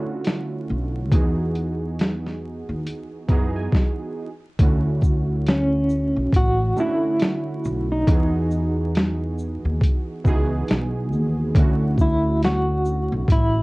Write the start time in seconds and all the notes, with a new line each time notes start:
Already playing: D3 A3 C#4 E4 F4 F#4
0.25 snare, closed hi-hat
0.70 B1
1.11 E2 E3 B3 D#4 F#4 G#4, kick, closed hi-hat
1.55 closed hi-hat
1.99 snare, closed hi-hat
2.26 snare
2.69 D#2
2.87 closed hi-hat
3.28 F#2 E3 B3 D#4 F#4 G#4 A#5, kick, closed hi-hat
3.56 G#5
3.72 kick, snare
4.59 D2 D3 A3 C#4 E4 F#4, kick, closed hi-hat
5.02 kick, shaker
5.47 C#4, snare, closed hi-hat
5.89 shaker
6.16 B1
6.33 A1 F#4, kick, closed hi-hat
6.76 D3 A3 C#4 E4 F#4, shaker
7.20 snare, closed hi-hat
7.64 B1, shaker
7.92 D#4
8.07 E2 E3 B3 D#4 F#4, kick, closed hi-hat
8.12 G#4
8.51 shaker
8.95 snare, closed hi-hat
9.38 shaker
9.65 D#2
9.81 kick, closed hi-hat
10.24 C#2 E3 B3 D#4 F#4 G#4, kick, shaker
10.68 B1, snare, closed hi-hat
11.13 D#2, shaker
11.55 D2 D3 A3 C#4 E4 F#4, kick, closed hi-hat
11.98 E4, kick, shaker
12.43 F#4, snare, closed hi-hat
12.85 shaker
13.12 B1
13.28 A1 E4, kick, closed hi-hat